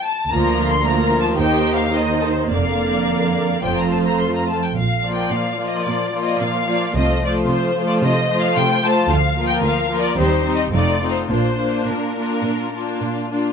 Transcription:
0.05 A5
0.31 D2 F3 A#3 F4 A#4 A#5
0.68 C6
0.83 F3 A#3 F4 A#4 A#5
1.20 A5
1.36 D#2 D#3 D#4 G4 C5 G5
1.74 F5
1.91 D#3 D#4 G4 C5 D#5
2.21 A4
2.31 C5
2.49 F1 F2 D3 A#3 A#4 D5 F5
3.63 F1 F2 F3 A3 F4 C5 G5
3.77 A#5
3.92 A5
4.06 A#5
4.20 C6
4.35 A#5
4.49 A5
4.63 G5
4.76 A#1 A#2 F5
5.04 F3 A#3 F4 D5
5.14 G5
5.31 A#2 F5
5.59 F3 A#3 F4 D5
5.69 D#5
5.85 A#2 D5
6.14 F3 A#3 F4 D5
6.23 D#5
6.40 A#2 F5
6.68 F3 A#3 F4 D5
6.95 C2 C3 F3 A3 F4 C5 D#5
7.23 F3 A3 F4 C5 D5
7.50 C3 C5
7.77 F3 A3 F4 C5
7.88 D5
8.03 C3 D#5
8.31 F3 A3 F4 C5
8.40 F5
8.56 C3 G5
8.83 F3 A3 F4 C5 A5
9.10 D2 F5
9.36 F3 A#3 F4 A#4
9.47 G5
9.63 D2 F5
9.90 F3 A#3 F4 A#4
10.00 D5
10.17 D#2 G3 C4 D#4 G4 C5
10.45 G3 C4 D#4 G4
10.56 D#5
10.72 F1 F2 A3 C4 D#4 F4 D5
11.01 A3 C4 D#4 F4
11.11 C5
11.29 A#1 A#2 A#3 D4 F4 C5
11.59 A#3 D4 F4
11.87 A#2 A#4
12.17 A#3 D4 F4
12.44 A#2
12.74 A#3 D4 F4
13.02 A#2
13.31 A#3 D4 F4

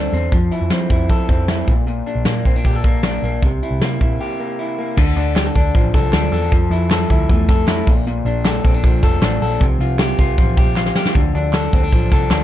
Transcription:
Already playing: D3 C4 D4 A4
0.13 E2 C4, closed hi-hat
0.32 F2 F3, kick, closed hi-hat
0.51 E4, closed hi-hat
0.61 F2
0.70 F3 C4, snare, closed hi-hat
0.90 F2 E4, kick, closed hi-hat
1.10 F3 A4, kick, closed hi-hat
1.29 F2 C4, kick, closed hi-hat
1.48 E4, snare, closed hi-hat
1.67 A#1 A#2, kick, closed hi-hat
1.87 A#2, closed hi-hat
2.06 D4, closed hi-hat
2.15 A#1
2.25 A#2 A#3, snare, closed hi-hat
2.45 A#1 C4, kick, closed hi-hat
2.56 D4
2.65 A#2 G4, kick, closed hi-hat
2.75 A4
2.84 A#1 A#3, kick, snare, closed hi-hat
3.03 D4, snare, closed hi-hat
3.22 A#1 A#3, closed hi-hat
3.43 C2 C3, kick, closed hi-hat
3.62 E4, closed hi-hat
3.71 C2
3.80 C3 A#3, snare, closed hi-hat
4.01 A#2 E4, kick, closed hi-hat
4.20 G4
4.40 A#3
4.59 E4
4.78 A#3
4.97 D2 D3, kick, crash
5.16 D2 D4, closed hi-hat
5.36 G4, snare, clap, closed hi-hat
5.46 A4
5.55 D2 D4, kick, closed hi-hat
5.74 A1 F3, kick, closed hi-hat
5.94 C2 A4, kick, snare, closed hi-hat
6.13 D2 D4, snare, clap, closed hi-hat
6.32 E2 A4, open hi-hat
6.52 F2 F3, kick, closed hi-hat
6.70 F2 E4, closed hi-hat
6.90 A4, snare, clap, closed hi-hat
7.10 D2 E4, kick, closed hi-hat
7.29 E2 A3, kick, closed hi-hat
7.49 F2 A4, kick, snare, closed hi-hat
7.68 E4, snare, clap, closed hi-hat
7.87 A#1 A#2, kick, open hi-hat
8.07 A#2, closed hi-hat
8.25 A#1 D4, closed hi-hat
8.45 A4, snare, clap, closed hi-hat
8.65 A#1 C4, kick, closed hi-hat
8.74 D4
8.84 A#1 F3, kick, closed hi-hat
9.02 F1 A4, kick, snare, closed hi-hat
9.22 A1 D4, snare, clap, closed hi-hat
9.41 A#1 A4, open hi-hat
9.60 C2 C3, kick, closed hi-hat
9.79 C2 F4, closed hi-hat
9.99 G4, snare, clap, closed hi-hat
10.18 C2 F4, kick, closed hi-hat
10.38 A1 F3, kick, closed hi-hat
10.57 A#1 G4, kick, closed hi-hat
10.76 F4, snare, clap
10.86 snare
10.95 G4, snare
11.05 snare
11.15 D2 D3, kick, closed hi-hat
11.34 D2 D4, closed hi-hat
11.53 A4, snare, clap, closed hi-hat
11.73 D2 C4, kick, closed hi-hat
11.83 D4
11.92 A1 F3, kick, closed hi-hat
12.11 C2 A4, kick, snare, closed hi-hat
12.30 D2 D4, snare, clap, closed hi-hat

